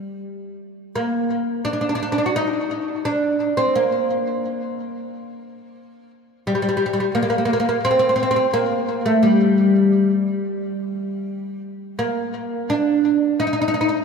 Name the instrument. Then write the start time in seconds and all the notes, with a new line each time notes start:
oud
Already playing: G3
0.95 A#3
1.65 D4
1.73 D4
1.81 D4
1.89 D4
1.95 D4
2.03 D4
2.12 D4
2.18 D4
2.26 F#4
2.36 D#4
3.05 D4
3.57 C4
3.75 A#3
6.47 G3
6.55 G3
6.62 G3
6.69 G3
6.77 G3
6.86 G3
6.93 G3
7.00 G3
7.15 A#3
7.23 A#3
7.30 A#3
7.38 A#3
7.45 A#3
7.53 A#3
7.60 A#3
7.69 A#3
7.85 C4
7.91 C4
7.99 C4
8.09 C4
8.16 C4
8.23 C4
8.31 C4
8.36 C4
8.54 A#3
9.06 A3
9.23 G3
11.99 A#3
12.70 D4
13.40 D#4
13.47 D#4
13.53 D#4
13.61 D#4
13.68 D#4
13.74 D#4
13.81 D#4
13.89 D#4